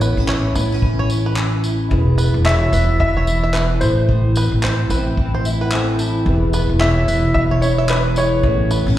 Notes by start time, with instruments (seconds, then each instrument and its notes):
Already playing: upright bass A1, steel-string acoustic guitar A2 E3 E4, felt piano B3 C#4 E4 A4 C#5
0.01 steel-string acoustic guitar B3, five-string banjo B4, tambourine
0.17 upright bass A1, steel-string acoustic guitar C#4
0.28 steel-string acoustic guitar E4, five-string banjo C#5, clap
0.55 upright bass A1, steel-string acoustic guitar B3, five-string banjo B4, tambourine
0.72 steel-string acoustic guitar C#4
0.82 steel-string acoustic guitar E3, kick
0.99 five-string banjo C#5
1.09 steel-string acoustic guitar E4, tambourine
1.26 five-string banjo B4
1.36 steel-string acoustic guitar C#4, clap
1.64 steel-string acoustic guitar E4, tambourine
1.89 upright bass E1, steel-string acoustic guitar E2, felt piano E4 G#4, kick
1.93 felt piano B4
2.17 steel-string acoustic guitar B3, five-string banjo B4, tambourine
2.34 upright bass E1
2.45 steel-string acoustic guitar E4, five-string banjo C#5, upright piano E5, clap
2.72 upright bass E1, steel-string acoustic guitar B3, five-string banjo B4, tambourine
3.00 steel-string acoustic guitar E3, upright piano E5, kick
3.17 five-string banjo C#5
3.27 steel-string acoustic guitar E4, tambourine
3.44 five-string banjo E5
3.53 steel-string acoustic guitar B3, upright piano B4, five-string banjo E5, clap
3.80 upright bass A1, steel-string acoustic guitar A2, felt piano E4 A4 C5, upright piano C5, tambourine
4.08 steel-string acoustic guitar A2, kick
4.36 steel-string acoustic guitar C4, five-string banjo B4, tambourine
4.52 upright bass A1
4.63 steel-string acoustic guitar E4, five-string banjo C5, clap
4.90 upright bass A1, steel-string acoustic guitar C4, five-string banjo B4, tambourine
5.17 steel-string acoustic guitar E3, kick
5.35 five-string banjo C5
5.45 steel-string acoustic guitar E4, felt piano E5, tambourine
5.61 five-string banjo B4, felt piano F#5
5.72 steel-string acoustic guitar C4, felt piano E4 A4 C5 G#5, clap
5.99 steel-string acoustic guitar E4, felt piano A5, tambourine
6.25 upright bass E1, steel-string acoustic guitar E2, felt piano E4 G4 B4, kick
6.34 felt piano G#4
6.53 steel-string acoustic guitar B3, five-string banjo B4, tambourine
6.69 upright bass E1
6.80 steel-string acoustic guitar E4, five-string banjo C#5, upright piano E5, clap
7.08 upright bass E1, steel-string acoustic guitar B3, five-string banjo B4, tambourine
7.34 steel-string acoustic guitar E3, upright piano E5, kick
7.51 five-string banjo C#5
7.62 steel-string acoustic guitar E4, upright piano C#5, tambourine
7.78 five-string banjo E5
7.89 steel-string acoustic guitar B3, upright piano B4, five-string banjo E5, clap
8.16 felt piano E4 G#4 B4, steel-string acoustic guitar E4, upright piano C#5, tambourine
8.42 upright bass A1, steel-string acoustic guitar A2, felt piano B3 C#4 E4 A4 C#5, kick
8.71 steel-string acoustic guitar B3, five-string banjo B4, tambourine
8.86 upright bass A1, steel-string acoustic guitar C#4